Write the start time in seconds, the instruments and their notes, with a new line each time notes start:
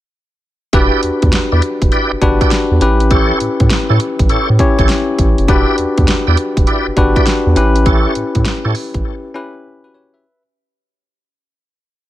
0.73 analog synth bass E1, tine electric piano D4 F#4 G4 B4, tonewheel organ E4 G4 B4 D5, kick, closed hi-hat
1.03 analog synth bass E2, closed hi-hat
1.22 analog synth bass E2, kick, closed hi-hat
1.32 analog synth bass E2, snare, closed hi-hat
1.52 analog synth bass E2, tonewheel organ E4 G4 B4 D5
1.62 closed hi-hat
1.82 analog synth bass E1, kick, closed hi-hat
1.92 tonewheel organ E4 G4 B4 D5, closed hi-hat
2.12 analog synth bass G1
2.22 analog synth bass G1, tine electric piano D4 F#4 G4 B4, kick, closed hi-hat
2.41 tonewheel organ E4 G4 B4 D5, kick, closed hi-hat
2.51 snare, closed hi-hat
2.71 analog synth bass E2
2.81 analog synth bass A1, tine electric piano C#4 E4 G4 B4, closed hi-hat
3.00 closed hi-hat
3.10 tonewheel organ E4 G4 A4 C#5, kick, closed hi-hat
3.40 analog synth bass A2, closed hi-hat
3.60 analog synth bass A2, kick, closed hi-hat
3.70 analog synth bass A2, snare, closed hi-hat
3.89 analog synth bass A2, tonewheel organ E4 G4 A4 C#5
4.00 closed hi-hat
4.19 analog synth bass A1, kick, closed hi-hat
4.29 analog synth bass A2, tonewheel organ E4 G4 A4 C#5, closed hi-hat
4.50 analog synth bass A2
4.59 tine electric piano C#4 E4 G4 C#5, kick, closed hi-hat
4.79 analog synth bass A1, tonewheel organ E4 G4 A4 C#5, kick, closed hi-hat
4.89 snare, closed hi-hat
5.19 analog synth bass A1, kick, closed hi-hat
5.38 analog synth bass F#1, closed hi-hat
5.48 analog synth bass E1, tine electric piano D4 F#4 G4 B4, tonewheel organ E4 G4 B4 D5, kick, closed hi-hat
5.78 analog synth bass E2, closed hi-hat
5.98 analog synth bass E2, kick, closed hi-hat
6.08 analog synth bass E2, snare, closed hi-hat
6.27 analog synth bass E2, tonewheel organ E4 G4 B4 D5
6.37 closed hi-hat
6.57 analog synth bass E1, kick, closed hi-hat
6.67 tonewheel organ E4 G4 B4 D5, closed hi-hat
6.87 analog synth bass G1
6.97 analog synth bass G1, tine electric piano D4 F#4 G4 B4, kick, closed hi-hat
7.16 tonewheel organ E4 G4 B4 D5, kick, closed hi-hat
7.26 snare, closed hi-hat
7.47 analog synth bass E2
7.56 analog synth bass A1, tine electric piano C#4 E4 G4 B4, closed hi-hat
7.76 closed hi-hat
7.85 tonewheel organ E4 G4 A4 C#5, kick, closed hi-hat
8.15 analog synth bass A2, closed hi-hat
8.35 analog synth bass A2, kick, closed hi-hat
8.45 analog synth bass A2, snare, closed hi-hat
8.64 analog synth bass A2, tonewheel organ E4 G4 A4 C#5
8.75 open hi-hat
8.94 analog synth bass A1, kick, closed hi-hat
9.34 tine electric piano C#4 E4 G4 B4
9.84 tine electric piano F#4 B4
9.94 tine electric piano G4 C#5
10.14 tine electric piano B4 E5